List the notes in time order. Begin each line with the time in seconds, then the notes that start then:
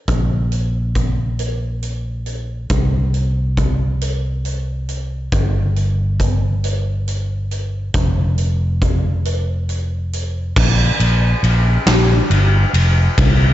0.08 A#1, kick, closed hi-hat
0.52 closed hi-hat
0.95 kick, closed hi-hat
1.39 closed hi-hat
1.83 closed hi-hat
2.26 closed hi-hat
2.70 C2, kick, closed hi-hat
3.14 closed hi-hat
3.57 kick, closed hi-hat
4.01 closed hi-hat
4.45 closed hi-hat
4.89 closed hi-hat
5.32 G1, kick, closed hi-hat
5.76 closed hi-hat
6.20 kick, closed hi-hat
6.64 closed hi-hat
7.08 closed hi-hat
7.51 closed hi-hat
7.94 F1, kick, closed hi-hat
8.38 closed hi-hat
8.82 kick, closed hi-hat
9.25 closed hi-hat
9.69 closed hi-hat
10.13 closed hi-hat
10.56 A#1, kick, crash
11.00 A#1, ride
11.43 A#1, ride
11.86 A#1, snare, ride
12.30 G1, ride
12.73 F1, ride
13.18 C2, kick, ride